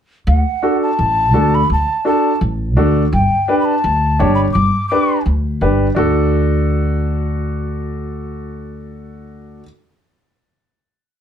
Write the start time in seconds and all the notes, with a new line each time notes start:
0.27 D2 F#5
0.62 D4 F#4 A4
0.82 A5
0.99 A1
1.33 D2 D4 F#4 A4
1.54 B5
1.70 D2 A5
2.05 D4 F#4 A4 A5
2.41 A1
2.77 D2 D4 F#4 A4
3.13 G1 G5
3.48 D4 G4 B4
3.60 B5
3.65 A5
3.84 D2
4.19 G1 D4 G4 C#5
4.35 B5
4.53 G1 D6
4.88 D4 G4 B4 D6
5.26 D2
5.61 G1 D4 G4 B4
5.95 D2 D4 F#4 A4